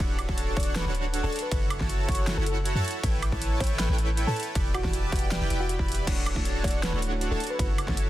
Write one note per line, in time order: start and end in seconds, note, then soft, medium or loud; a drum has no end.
0.00 0.27 D1 loud
0.00 0.12 D4 medium
0.00 0.12 F#4 medium
0.00 0.12 A4 medium
0.00 0.12 C#5 medium
0.00 0.12 F#5 medium
0.19 closed hi-hat medium
0.19 high woodblock medium
0.29 0.55 D1 loud
0.29 0.55 D4 medium
0.29 0.55 F#4 medium
0.29 0.55 A4 medium
0.29 0.54 C#5 medium
0.29 0.55 A5 loud
0.29 kick medium
0.38 closed hi-hat medium
0.56 0.84 D1 loud
0.56 0.83 D4 loud
0.56 0.83 F#4 medium
0.56 0.83 A4 medium
0.56 0.83 C#5 medium
0.56 0.71 D5 medium
0.56 0.83 F#5 loud
0.56 kick loud
0.56 closed hi-hat soft
0.60 closed hi-hat medium
0.63 closed hi-hat medium
0.76 0.90 B4 loud
0.76 snare loud
0.76 closed hi-hat medium
0.76 ride soft
0.85 1.22 D1 loud
0.85 1.21 D4 medium
0.85 1.21 F#4 medium
0.85 1.21 A4 medium
0.85 1.21 C#5 medium
0.85 1.21 F#5 loud
0.95 closed hi-hat medium
1.14 closed hi-hat medium
1.23 1.29 D1 loud
1.23 1.31 D4 loud
1.23 1.31 F#4 medium
1.23 1.31 A4 medium
1.23 1.37 A4 medium
1.23 1.31 C#5 medium
1.23 1.31 A5 loud
1.33 closed hi-hat soft
1.36 closed hi-hat medium
1.39 1.48 B4 medium
1.39 closed hi-hat medium
1.51 1.79 F#1 loud
1.51 1.64 E4 medium
1.51 1.64 F#4 medium
1.51 1.64 A4 medium
1.51 1.58 B4 medium
1.51 1.64 C#5 medium
1.51 1.64 F#5 medium
1.51 kick loud
1.51 closed hi-hat medium
1.51 ride medium
1.70 closed hi-hat medium
1.70 high woodblock medium
1.80 2.07 F#1 loud
1.80 2.06 E4 medium
1.80 2.06 F#4 medium
1.80 2.06 A4 medium
1.80 2.06 C#5 medium
1.80 2.06 A5 loud
1.80 kick medium
1.80 snare soft
1.89 closed hi-hat medium
2.08 2.35 F#1 loud
2.08 2.35 E4 loud
2.08 2.35 F#4 medium
2.08 2.35 A4 medium
2.08 2.23 C#5 medium
2.08 2.35 C#5 medium
2.08 2.35 F#5 loud
2.08 kick loud
2.08 closed hi-hat soft
2.12 closed hi-hat medium
2.15 closed hi-hat medium
2.27 snare loud
2.27 closed hi-hat medium
2.27 ride soft
2.37 2.73 F#1 loud
2.37 2.73 E4 medium
2.37 2.73 F#4 medium
2.37 2.73 A4 medium
2.37 2.43 A4 medium
2.37 2.73 C#5 medium
2.37 2.73 F#5 loud
2.46 2.53 A4 medium
2.46 closed hi-hat medium
2.65 closed hi-hat medium
2.75 2.81 F#2 loud
2.75 2.83 E4 loud
2.75 2.83 F#4 medium
2.75 2.83 A4 medium
2.75 2.83 C#5 medium
2.75 2.83 A5 loud
2.84 closed hi-hat soft
2.88 closed hi-hat medium
2.91 closed hi-hat medium
3.03 3.30 A1 loud
3.03 3.16 E4 medium
3.03 3.16 A4 medium
3.03 3.16 B4 medium
3.03 3.16 C#5 medium
3.03 3.16 G5 medium
3.03 kick loud
3.03 closed hi-hat medium
3.03 ride soft
3.22 closed hi-hat medium
3.22 high woodblock medium
3.32 3.59 A1 loud
3.32 3.58 E4 medium
3.32 3.58 A4 medium
3.32 3.58 B4 medium
3.32 3.58 C#5 medium
3.32 3.58 A5 loud
3.32 kick medium
3.42 closed hi-hat medium
3.60 3.87 A1 loud
3.60 3.87 E4 loud
3.60 3.87 A4 medium
3.60 3.87 B4 medium
3.60 3.87 C#5 medium
3.60 3.75 C#5 medium
3.60 3.87 G5 loud
3.60 kick loud
3.60 closed hi-hat soft
3.64 closed hi-hat medium
3.67 closed hi-hat medium
3.79 3.94 B4 loud
3.79 snare loud
3.79 closed hi-hat medium
3.79 ride soft
3.89 4.25 A1 loud
3.89 4.25 E4 medium
3.89 4.25 A4 medium
3.89 4.25 B4 medium
3.89 4.25 C#5 medium
3.89 4.25 G5 medium
3.98 closed hi-hat medium
4.17 closed hi-hat medium
4.27 4.33 A2 loud
4.27 4.35 E4 loud
4.27 4.41 A4 medium
4.27 4.35 A4 medium
4.27 4.35 B4 medium
4.27 4.35 C#5 medium
4.27 4.35 A5 loud
4.36 closed hi-hat medium
4.40 closed hi-hat medium
4.43 closed hi-hat medium
4.55 4.82 E1 loud
4.55 4.68 E4 medium
4.55 4.68 G4 medium
4.55 4.68 B4 medium
4.55 4.68 D5 medium
4.55 4.68 G5 medium
4.55 kick loud
4.55 closed hi-hat medium
4.55 ride soft
4.74 4.82 F#4 medium
4.74 closed hi-hat medium
4.74 high woodblock medium
4.84 5.11 E1 loud
4.84 5.10 E4 medium
4.84 4.98 F#4 medium
4.84 5.10 G4 medium
4.84 5.10 B4 medium
4.84 5.10 D5 medium
4.84 5.10 A5 loud
4.84 kick medium
4.84 snare soft
4.93 closed hi-hat medium
5.12 5.39 E1 loud
5.12 5.39 E4 loud
5.12 5.27 F#4 medium
5.12 5.39 G4 loud
5.12 5.39 B4 medium
5.12 5.39 D5 medium
5.12 5.39 G5 loud
5.12 kick loud
5.12 closed hi-hat medium
5.16 closed hi-hat medium
5.19 closed hi-hat medium
5.31 snare loud
5.31 closed hi-hat medium
5.31 ride soft
5.41 5.48 E1 loud
5.41 5.49 E4 medium
5.41 5.49 G4 medium
5.41 5.49 B4 medium
5.41 5.49 D5 medium
5.41 5.49 G5 medium
5.50 5.77 E1 loud
5.50 5.63 E4 medium
5.50 5.63 G4 medium
5.50 5.63 B4 medium
5.50 5.63 D5 medium
5.50 5.63 G5 loud
5.50 closed hi-hat medium
5.60 5.66 F#4 medium
5.69 5.76 F#4 medium
5.69 closed hi-hat medium
5.79 6.06 E1 loud
5.79 6.05 E4 medium
5.79 6.05 G4 medium
5.79 6.05 B4 medium
5.79 6.05 D5 medium
5.79 6.05 B5 medium
5.79 kick medium
5.88 closed hi-hat medium
5.92 closed hi-hat medium
5.95 closed hi-hat medium
6.07 6.34 D1 loud
6.07 6.13 A3 medium
6.07 6.13 D4 medium
6.07 6.20 D4 medium
6.07 6.14 E4 medium
6.07 6.20 F#4 medium
6.07 6.14 F#4 medium
6.07 6.20 A4 medium
6.07 6.20 C#5 medium
6.07 6.14 C#5 medium
6.07 6.20 F#5 medium
6.07 kick loud
6.07 closed hi-hat medium
6.07 crash medium
6.07 ride soft
6.26 closed hi-hat medium
6.26 high woodblock medium
6.35 6.62 D1 loud
6.35 6.42 A3 medium
6.35 6.42 D4 medium
6.35 6.62 D4 medium
6.35 6.42 E4 medium
6.35 6.62 F#4 medium
6.35 6.42 F#4 medium
6.35 6.62 A4 medium
6.35 6.62 C#5 medium
6.35 6.43 C#5 loud
6.35 6.62 A5 loud
6.35 kick medium
6.45 closed hi-hat medium
6.63 6.91 D1 loud
6.63 6.70 A3 medium
6.63 6.70 D4 medium
6.63 6.91 D4 loud
6.63 6.71 E4 medium
6.63 6.91 F#4 medium
6.63 6.71 F#4 medium
6.63 6.91 A4 medium
6.63 6.91 C#5 medium
6.63 6.71 C#5 medium
6.63 6.79 D5 loud
6.63 6.91 F#5 loud
6.63 kick loud
6.63 closed hi-hat medium
6.68 closed hi-hat medium
6.71 closed hi-hat medium
6.83 6.98 B4 medium
6.83 snare loud
6.83 closed hi-hat medium
6.83 ride soft
6.92 7.29 D1 loud
6.92 7.09 A3 medium
6.92 7.10 D4 medium
6.92 7.29 D4 medium
6.92 7.10 E4 medium
6.92 7.29 F#4 medium
6.92 7.10 F#4 medium
6.92 7.29 A4 medium
6.92 7.29 C#5 medium
6.92 7.10 C#5 medium
6.92 7.29 F#5 loud
7.02 closed hi-hat medium
7.11 7.28 A3 medium
7.11 7.29 D4 medium
7.11 7.29 E4 medium
7.11 7.29 F#4 medium
7.11 7.29 C#5 loud
7.21 closed hi-hat medium
7.30 7.37 D1 loud
7.30 7.40 A3 medium
7.30 7.40 D4 medium
7.30 7.39 D4 loud
7.30 7.40 E4 medium
7.30 7.39 F#4 medium
7.30 7.41 F#4 medium
7.30 7.39 A4 medium
7.30 7.45 A4 loud
7.30 7.39 C#5 medium
7.30 7.41 E5 medium
7.30 7.38 A5 loud
7.40 closed hi-hat medium
7.44 closed hi-hat medium
7.47 7.56 B4 medium
7.47 closed hi-hat medium
7.58 7.86 F#1 loud
7.58 7.65 A3 medium
7.58 7.65 C#4 medium
7.58 7.65 E4 medium
7.58 7.72 E4 medium
7.58 7.72 F#4 medium
7.58 7.66 F#4 medium
7.58 7.72 A4 medium
7.58 7.66 B4 medium
7.58 7.72 C#5 medium
7.58 7.66 C#5 medium
7.58 7.72 F#5 medium
7.58 kick loud
7.58 closed hi-hat medium
7.58 ride soft
7.78 closed hi-hat medium
7.78 high woodblock medium
7.87 8.10 F#1 loud
7.87 7.93 A3 loud
7.87 7.94 C#4 medium
7.87 7.94 E4 medium
7.87 8.10 E4 medium
7.87 8.10 F#4 medium
7.87 7.94 F#4 medium
7.87 8.10 A4 medium
7.87 8.10 C#5 medium
7.87 7.94 C#5 loud
7.87 8.10 A5 loud
7.87 kick medium
7.87 snare soft
7.97 closed hi-hat medium